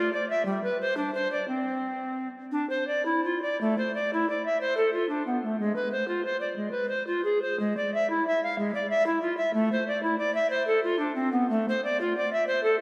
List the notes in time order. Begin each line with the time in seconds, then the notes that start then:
Already playing: F4
0.13 D5
0.29 E5
0.45 G3
0.63 B4
0.81 C5
0.97 D4
1.14 C5
1.32 D5
1.48 C4
2.51 D4
2.69 C5
2.87 D5
3.05 E4
3.24 F4
3.42 D5
3.61 A3
3.78 C5
3.94 D5
4.13 E4
4.29 D5
4.45 E5
4.60 C5
4.77 A4
4.93 F4
5.09 D4
5.27 B3
5.43 A3
5.59 G#3
5.75 B4
5.92 C5
6.08 F4
6.25 C5
6.40 D5
6.56 G#3
6.71 B4
6.88 C5
7.06 F4
7.24 G#4
7.42 C5
7.59 G#3
7.77 D5
7.94 E5
8.10 E4
8.27 E5
8.43 F5
8.58 G#3
8.74 D5
8.90 E5
9.06 E4
9.21 F4
9.37 E5
9.53 A3
9.72 C5
9.87 D5
10.02 E4
10.18 D5
10.34 E5
10.50 C5
10.67 A4
10.83 F4
10.99 D4
11.15 C4
11.32 B3
11.49 A3
11.68 C5
11.84 D5
12.00 F4
12.17 D5
12.32 E5
12.47 C5
12.63 A4